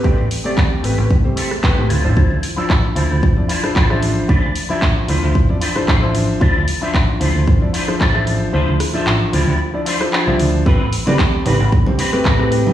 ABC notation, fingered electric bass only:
X:1
M:4/4
L:1/16
Q:"Swing 16ths" 1/4=113
K:Am
V:1 name="Fingered electric bass" clef=bass
A,,, A,,, z2 E,, z A,,, A,,, A,, C,, z3 A,, D,, A,,, | D,, D,, z2 A,,, z D,, D,, A,,, F,, z2 A,,,3 z | D,, D,, z2 A,,, z D,, D,, A,,, F,, z2 A,,,3 z | D,, D,, z2 A,,, z D,, D,, A,,, F,, z2 A,,,3 z |
D,, D,, z2 A,,, z D,, D,, z4 z C,, D,,2 | A,,, A,,, z2 E,, z A,,, A,,, A,, C,, z2 A,,3 z |]